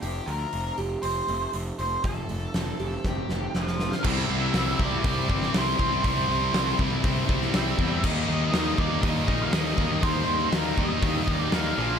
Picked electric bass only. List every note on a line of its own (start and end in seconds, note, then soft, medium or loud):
0.03 0.20 F1 medium
0.28 0.45 D2 medium
0.53 0.70 F1 medium
0.79 0.95 F1 medium
1.04 1.20 F1 medium
1.29 1.46 F1 medium
1.54 1.71 F1 medium
1.79 1.96 F1 medium
2.04 2.21 F1 medium
2.30 2.46 F1 medium
2.55 2.71 F1 medium
2.80 2.96 F1 medium
3.05 3.21 F1 medium
3.30 3.46 F1 medium
3.55 3.88 F1 medium
4.05 4.23 C2 medium
4.30 4.48 C2 medium
4.55 4.73 C2 medium
4.79 4.98 C2 medium
5.04 5.23 C2 medium
5.30 5.48 G1 medium
5.54 5.73 C2 medium
5.79 5.98 C2 medium
6.05 6.23 C2 medium
6.29 6.48 C2 medium
6.54 6.73 C2 medium
6.79 6.98 C2 medium
7.04 7.23 C2 medium
7.29 7.48 C2 medium
7.54 7.72 C2 medium
7.78 8.04 E2 medium
8.04 8.22 D#2 loud
8.29 8.47 D#2 medium
8.54 8.72 D#2 loud
8.78 8.97 D#2 medium
9.03 9.22 D#2 medium
9.28 9.47 A#1 medium
9.53 9.72 D#2 medium
9.78 9.97 D#2 medium
10.03 10.22 D#2 medium
10.28 10.47 D#2 medium
10.52 10.71 D#2 medium
10.78 10.97 D#2 medium
11.02 11.21 D#2 medium
11.28 11.47 D#2 medium
11.52 11.72 D#2 medium
11.78 11.97 A#1 medium